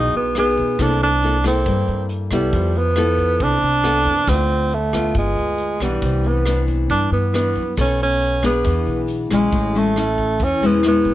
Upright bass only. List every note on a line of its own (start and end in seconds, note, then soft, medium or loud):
0.00 0.12 B1 medium
0.13 0.54 B1 medium
0.58 0.78 E2 medium
0.79 1.62 C2 medium
1.66 1.87 G2 medium
1.88 2.29 G2 medium
2.31 2.51 C2 medium
2.53 3.36 F2 loud
3.40 3.61 C2 medium
3.62 4.03 C2 medium
4.05 4.26 F2 medium
4.27 5.11 D2 loud
5.15 5.35 G1 medium
5.36 5.77 D2 medium
5.81 6.01 B1 medium
6.02 6.86 C2 loud
6.90 7.10 G2 medium
7.12 7.52 G2 medium
7.56 7.76 F#2 medium
7.78 8.61 B1 loud
8.65 8.85 E2 medium
8.87 9.27 B1 medium
9.31 9.51 B1 medium
9.53 10.36 A1 loud
10.40 10.60 E2 medium
10.61 11.02 E2 medium
11.05 11.14 A1 medium